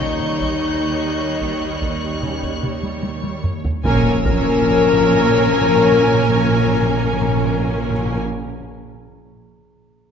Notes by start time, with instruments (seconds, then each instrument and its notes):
Already playing: double bass section D#2, cello section D#3, viola section G3, french horn section D#4, clarinet D#4, violin section C#5 D#5 C#6 G6
0.00 taiko mid
0.20 taiko mid
0.41 taiko
0.89 violin section F#6
1.41 taiko
1.82 taiko
2.23 trombone section G3 C#4, taiko mid
2.43 taiko
2.63 taiko mid
2.83 taiko high
3.04 taiko high
3.24 taiko high
3.44 taiko low-mid
3.64 taiko low
3.84 double bass section A#1, timpani A#2, trombone section F3 C#4, cello section A#3, viola section C#4 A#4, french horn section A#4, clarinet A#4, violin section A#4 G#5 A#5 E6, taiko, impact
3.89 timpani A#2
3.96 timpani A#2
4.03 timpani A#2
4.25 double bass section A#1, timpani A#2, cello section A#3, viola section C#4 A#4, clarinet A#4, violin section A#4 G#5, taiko
4.32 timpani A#2
4.40 timpani A#2
4.48 timpani A#2
4.55 timpani A#2
4.62 timpani A#2
4.70 timpani A#2
4.78 timpani A#2
4.86 timpani A#2
4.93 timpani A#2
5.00 timpani A#2
5.08 timpani A#2
5.15 timpani A#2
5.23 timpani A#2
5.30 timpani A#2
5.38 timpani A#2
5.46 timpani A#2
5.53 timpani A#2
5.61 timpani A#2
5.69 timpani A#2
5.76 timpani A#2
5.83 timpani A#2
5.92 timpani A#2
6.00 timpani A#2
6.07 timpani A#2
6.14 timpani A#2
6.21 timpani A#2
6.29 timpani A#2
6.37 timpani A#2
6.44 timpani A#2
6.52 timpani A#2
6.60 timpani A#2
6.67 timpani A#2
6.75 timpani A#2
6.82 timpani A#2
6.89 timpani A#2
6.96 timpani A#2
7.05 timpani A#2
7.12 timpani A#2
7.21 timpani A#2
7.28 timpani A#2
7.36 timpani A#2
7.44 timpani A#2
7.53 timpani A#2
7.60 timpani A#2
7.68 timpani A#2
7.75 timpani A#2
7.83 timpani A#2
7.90 timpani A#2
7.98 timpani A#2
8.06 timpani A#2
8.13 timpani A#2